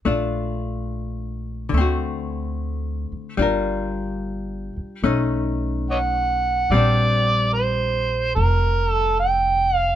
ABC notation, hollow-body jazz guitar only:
X:1
M:4/4
L:1/8
Q:"Swing" 1/4=72
K:Bb
V:1 name="Hollow-body jazz guitar"
[A,DF]4 [D,A,C^F]4 | [G,DFB]4 [A,^C^D]4 | [G,CD]8 |]